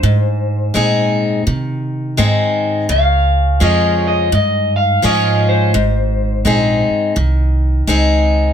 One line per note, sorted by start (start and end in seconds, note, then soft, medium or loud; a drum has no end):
0.00 0.72 G#2 medium
0.00 1.41 G#2 medium
0.00 1.14 C5 medium
0.74 1.44 A#2 loud
0.74 1.43 G#3 medium
0.74 1.44 C4 medium
0.74 1.44 D#4 medium
0.74 1.44 G#4 medium
1.47 2.16 C3 medium
1.47 2.84 D#3 medium
2.17 2.87 G#2 medium
2.17 2.86 G#3 medium
2.17 2.87 C4 loud
2.17 2.87 D#4 medium
2.17 2.87 G#4 loud
2.89 3.58 C#2 medium
2.89 4.26 C#3 loud
2.89 3.62 F5 loud
3.60 4.30 F2 loud
3.60 4.29 F3 medium
3.60 4.29 G#3 medium
3.60 4.30 C#4 medium
3.60 4.30 F4 medium
3.60 4.06 D#5 loud
4.08 4.33 D#5 loud
4.32 5.01 G2 loud
4.32 5.69 G#2 medium
4.32 4.76 D#5 medium
4.76 5.04 F5 loud
5.02 5.73 G#2 medium
5.02 5.71 F3 medium
5.02 5.72 G#3 loud
5.02 5.72 C#4 loud
5.02 5.72 F4 loud
5.02 5.49 D#5 medium
5.49 6.86 C5 medium
5.74 6.43 G#1 medium
5.74 7.11 G#2 loud
6.45 6.86 A#1 loud
6.45 7.14 G#3 medium
6.45 7.14 C4 medium
6.45 7.14 D#4 medium
6.45 7.15 G#4 medium
6.90 muted upright bass stroke soft
7.16 7.86 C2 medium
7.16 8.53 D#3 medium
7.87 8.53 C#2 medium
7.87 8.53 G#3 loud
7.87 8.53 C4 medium
7.87 8.53 D#4 loud
7.87 8.53 G#4 loud